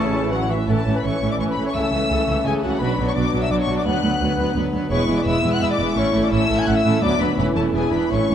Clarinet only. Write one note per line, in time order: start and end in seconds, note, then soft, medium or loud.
0.14 0.22 C#5 soft
0.32 0.49 F#4 soft
0.50 0.68 E4 soft
0.69 0.81 A4 soft
0.95 0.99 B4 soft
1.03 1.32 C#5 soft
1.31 1.39 D5 medium
1.39 1.50 C#5 medium
1.48 1.65 B4 soft
1.65 1.69 C#5 medium
1.75 2.48 E5 medium
2.46 2.63 G#4 medium
2.64 2.80 F#4 soft
2.80 2.92 B4 soft
3.07 3.11 C#5 soft
3.15 3.27 D5 soft
3.42 3.53 E5 medium
3.51 3.61 D5 medium
3.59 3.77 C#5 soft
3.77 3.88 D5 soft
3.86 4.56 F#5 medium
4.91 5.03 C#5 medium
5.18 5.21 D5 soft
5.27 5.55 E5 medium
5.54 5.62 F#5 medium
5.63 5.66 E5 medium
5.71 5.82 D5 medium
5.98 6.25 C#5 medium
6.24 6.31 D5 medium
6.31 6.60 E5 medium
6.59 6.67 G#5 medium
6.68 6.77 F#5 medium
6.76 7.04 E5 medium
7.02 7.20 D5 medium
7.22 7.29 B4 medium
7.39 7.58 B4 medium
7.56 7.76 A4 soft
7.75 7.94 G#4 soft
7.92 8.13 B4 medium
8.12 8.35 C#5 soft